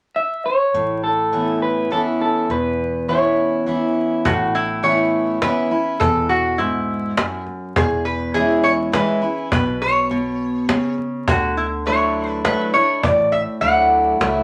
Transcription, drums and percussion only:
4.25 cajon bass medium
4.84 cajon slap soft
5.42 cajon slap medium
6.01 cajon bass medium
6.59 cajon slap soft
7.17 cajon slap medium
7.47 cajon slap soft
7.76 cajon bass medium
8.35 cajon slap soft
8.93 cajon slap medium
9.52 cajon bass medium
10.11 cajon slap soft
10.69 cajon slap medium
10.98 cajon slap soft
11.28 cajon bass loud
11.86 cajon slap soft
12.45 cajon slap medium
13.03 cajon bass medium
13.62 cajon slap soft
14.21 cajon slap medium

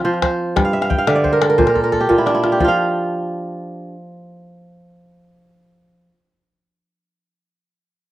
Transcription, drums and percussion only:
0.05 calabash click soft
0.14 calabash click soft
0.22 calabash thump medium
0.22 calabash click medium
0.31 calabash click soft
0.57 calabash thump medium
0.57 calabash click medium
0.82 calabash click medium
0.91 calabash thump medium
0.91 calabash click soft
0.99 calabash click soft
1.07 calabash click medium
1.25 calabash thump medium
1.34 calabash click soft
1.42 calabash click medium
1.50 calabash click soft
1.59 calabash thump medium
1.67 calabash click medium
1.75 calabash thump soft
1.93 calabash thump soft
2.10 calabash thump soft
2.27 calabash click medium
2.44 calabash click soft
2.60 calabash thump medium

